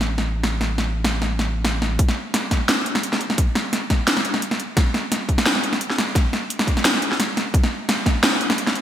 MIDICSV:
0, 0, Header, 1, 3, 480
1, 0, Start_track
1, 0, Tempo, 346821
1, 843, Time_signature, 4, 2, 24, 8
1, 12197, End_track
2, 0, Start_track
2, 0, Title_t, "Sub bass"
2, 0, Program_c, 0, 38
2, 0, Note_on_c, 0, 33, 86
2, 2741, Note_off_c, 0, 33, 0
2, 12197, End_track
3, 0, Start_track
3, 0, Title_t, "Drums"
3, 11, Note_on_c, 9, 40, 50
3, 149, Note_off_c, 9, 40, 0
3, 250, Note_on_c, 9, 40, 49
3, 388, Note_off_c, 9, 40, 0
3, 602, Note_on_c, 9, 40, 76
3, 741, Note_off_c, 9, 40, 0
3, 842, Note_on_c, 9, 40, 52
3, 980, Note_off_c, 9, 40, 0
3, 1082, Note_on_c, 9, 40, 54
3, 1221, Note_off_c, 9, 40, 0
3, 1446, Note_on_c, 9, 40, 81
3, 1585, Note_off_c, 9, 40, 0
3, 1685, Note_on_c, 9, 40, 49
3, 1824, Note_off_c, 9, 40, 0
3, 1926, Note_on_c, 9, 40, 52
3, 2064, Note_off_c, 9, 40, 0
3, 2277, Note_on_c, 9, 40, 78
3, 2416, Note_off_c, 9, 40, 0
3, 2518, Note_on_c, 9, 40, 53
3, 2656, Note_off_c, 9, 40, 0
3, 2755, Note_on_c, 9, 36, 114
3, 2757, Note_on_c, 9, 42, 81
3, 2886, Note_on_c, 9, 40, 53
3, 2893, Note_off_c, 9, 36, 0
3, 2895, Note_off_c, 9, 42, 0
3, 3024, Note_off_c, 9, 40, 0
3, 3238, Note_on_c, 9, 40, 80
3, 3238, Note_on_c, 9, 42, 69
3, 3376, Note_off_c, 9, 40, 0
3, 3376, Note_off_c, 9, 42, 0
3, 3476, Note_on_c, 9, 36, 58
3, 3477, Note_on_c, 9, 40, 53
3, 3477, Note_on_c, 9, 42, 39
3, 3614, Note_off_c, 9, 36, 0
3, 3616, Note_off_c, 9, 40, 0
3, 3616, Note_off_c, 9, 42, 0
3, 3721, Note_on_c, 9, 38, 118
3, 3721, Note_on_c, 9, 40, 53
3, 3721, Note_on_c, 9, 42, 79
3, 3859, Note_off_c, 9, 38, 0
3, 3859, Note_off_c, 9, 40, 0
3, 3859, Note_off_c, 9, 42, 0
3, 3959, Note_on_c, 9, 42, 38
3, 4085, Note_on_c, 9, 40, 79
3, 4098, Note_off_c, 9, 42, 0
3, 4200, Note_on_c, 9, 42, 67
3, 4223, Note_off_c, 9, 40, 0
3, 4328, Note_on_c, 9, 38, 35
3, 4328, Note_on_c, 9, 40, 51
3, 4338, Note_off_c, 9, 42, 0
3, 4438, Note_on_c, 9, 42, 37
3, 4466, Note_off_c, 9, 38, 0
3, 4466, Note_off_c, 9, 40, 0
3, 4565, Note_on_c, 9, 40, 52
3, 4577, Note_off_c, 9, 42, 0
3, 4679, Note_on_c, 9, 36, 115
3, 4679, Note_on_c, 9, 42, 82
3, 4704, Note_off_c, 9, 40, 0
3, 4817, Note_off_c, 9, 36, 0
3, 4818, Note_off_c, 9, 42, 0
3, 4919, Note_on_c, 9, 40, 79
3, 5057, Note_off_c, 9, 40, 0
3, 5160, Note_on_c, 9, 40, 53
3, 5160, Note_on_c, 9, 42, 71
3, 5299, Note_off_c, 9, 40, 0
3, 5299, Note_off_c, 9, 42, 0
3, 5399, Note_on_c, 9, 40, 54
3, 5399, Note_on_c, 9, 42, 39
3, 5400, Note_on_c, 9, 36, 62
3, 5538, Note_off_c, 9, 36, 0
3, 5538, Note_off_c, 9, 40, 0
3, 5538, Note_off_c, 9, 42, 0
3, 5640, Note_on_c, 9, 38, 126
3, 5640, Note_on_c, 9, 42, 81
3, 5766, Note_on_c, 9, 40, 75
3, 5779, Note_off_c, 9, 38, 0
3, 5779, Note_off_c, 9, 42, 0
3, 5879, Note_on_c, 9, 42, 37
3, 5905, Note_off_c, 9, 40, 0
3, 6005, Note_on_c, 9, 40, 52
3, 6018, Note_off_c, 9, 42, 0
3, 6119, Note_on_c, 9, 42, 66
3, 6143, Note_off_c, 9, 40, 0
3, 6246, Note_on_c, 9, 40, 51
3, 6258, Note_off_c, 9, 42, 0
3, 6362, Note_on_c, 9, 42, 39
3, 6385, Note_off_c, 9, 40, 0
3, 6500, Note_off_c, 9, 42, 0
3, 6597, Note_on_c, 9, 36, 125
3, 6599, Note_on_c, 9, 40, 77
3, 6599, Note_on_c, 9, 42, 80
3, 6736, Note_off_c, 9, 36, 0
3, 6738, Note_off_c, 9, 40, 0
3, 6738, Note_off_c, 9, 42, 0
3, 6841, Note_on_c, 9, 40, 51
3, 6979, Note_off_c, 9, 40, 0
3, 7082, Note_on_c, 9, 40, 54
3, 7082, Note_on_c, 9, 42, 72
3, 7220, Note_off_c, 9, 40, 0
3, 7220, Note_off_c, 9, 42, 0
3, 7317, Note_on_c, 9, 36, 64
3, 7321, Note_on_c, 9, 42, 38
3, 7447, Note_on_c, 9, 40, 76
3, 7455, Note_off_c, 9, 36, 0
3, 7459, Note_off_c, 9, 42, 0
3, 7560, Note_on_c, 9, 38, 127
3, 7560, Note_on_c, 9, 42, 81
3, 7585, Note_off_c, 9, 40, 0
3, 7684, Note_on_c, 9, 40, 48
3, 7698, Note_off_c, 9, 38, 0
3, 7698, Note_off_c, 9, 42, 0
3, 7800, Note_on_c, 9, 42, 37
3, 7823, Note_off_c, 9, 40, 0
3, 7926, Note_on_c, 9, 40, 48
3, 7938, Note_off_c, 9, 42, 0
3, 8041, Note_on_c, 9, 42, 67
3, 8064, Note_off_c, 9, 40, 0
3, 8169, Note_on_c, 9, 38, 36
3, 8180, Note_off_c, 9, 42, 0
3, 8283, Note_on_c, 9, 40, 75
3, 8283, Note_on_c, 9, 42, 36
3, 8307, Note_off_c, 9, 38, 0
3, 8421, Note_off_c, 9, 40, 0
3, 8421, Note_off_c, 9, 42, 0
3, 8515, Note_on_c, 9, 36, 120
3, 8523, Note_on_c, 9, 40, 48
3, 8523, Note_on_c, 9, 42, 79
3, 8654, Note_off_c, 9, 36, 0
3, 8661, Note_off_c, 9, 40, 0
3, 8661, Note_off_c, 9, 42, 0
3, 8762, Note_on_c, 9, 40, 49
3, 8901, Note_off_c, 9, 40, 0
3, 9000, Note_on_c, 9, 42, 70
3, 9125, Note_on_c, 9, 40, 75
3, 9139, Note_off_c, 9, 42, 0
3, 9234, Note_on_c, 9, 36, 65
3, 9242, Note_on_c, 9, 42, 37
3, 9263, Note_off_c, 9, 40, 0
3, 9368, Note_on_c, 9, 40, 48
3, 9373, Note_off_c, 9, 36, 0
3, 9380, Note_off_c, 9, 42, 0
3, 9480, Note_on_c, 9, 38, 125
3, 9480, Note_on_c, 9, 42, 79
3, 9507, Note_off_c, 9, 40, 0
3, 9605, Note_on_c, 9, 40, 48
3, 9618, Note_off_c, 9, 38, 0
3, 9618, Note_off_c, 9, 42, 0
3, 9719, Note_on_c, 9, 42, 36
3, 9744, Note_off_c, 9, 40, 0
3, 9848, Note_on_c, 9, 38, 36
3, 9857, Note_off_c, 9, 42, 0
3, 9960, Note_on_c, 9, 40, 74
3, 9960, Note_on_c, 9, 42, 65
3, 9986, Note_off_c, 9, 38, 0
3, 10098, Note_off_c, 9, 40, 0
3, 10098, Note_off_c, 9, 42, 0
3, 10202, Note_on_c, 9, 40, 49
3, 10202, Note_on_c, 9, 42, 37
3, 10341, Note_off_c, 9, 40, 0
3, 10341, Note_off_c, 9, 42, 0
3, 10434, Note_on_c, 9, 36, 115
3, 10442, Note_on_c, 9, 42, 74
3, 10567, Note_on_c, 9, 40, 52
3, 10572, Note_off_c, 9, 36, 0
3, 10581, Note_off_c, 9, 42, 0
3, 10706, Note_off_c, 9, 40, 0
3, 10917, Note_on_c, 9, 40, 77
3, 10917, Note_on_c, 9, 42, 65
3, 11055, Note_off_c, 9, 40, 0
3, 11055, Note_off_c, 9, 42, 0
3, 11153, Note_on_c, 9, 36, 59
3, 11160, Note_on_c, 9, 40, 52
3, 11160, Note_on_c, 9, 42, 36
3, 11292, Note_off_c, 9, 36, 0
3, 11298, Note_off_c, 9, 40, 0
3, 11298, Note_off_c, 9, 42, 0
3, 11397, Note_on_c, 9, 38, 125
3, 11397, Note_on_c, 9, 40, 52
3, 11397, Note_on_c, 9, 42, 78
3, 11535, Note_off_c, 9, 38, 0
3, 11535, Note_off_c, 9, 40, 0
3, 11535, Note_off_c, 9, 42, 0
3, 11637, Note_on_c, 9, 42, 36
3, 11762, Note_on_c, 9, 40, 73
3, 11775, Note_off_c, 9, 42, 0
3, 11877, Note_on_c, 9, 42, 61
3, 11901, Note_off_c, 9, 40, 0
3, 12002, Note_on_c, 9, 38, 36
3, 12002, Note_on_c, 9, 40, 52
3, 12015, Note_off_c, 9, 42, 0
3, 12117, Note_on_c, 9, 42, 36
3, 12141, Note_off_c, 9, 38, 0
3, 12141, Note_off_c, 9, 40, 0
3, 12197, Note_off_c, 9, 42, 0
3, 12197, End_track
0, 0, End_of_file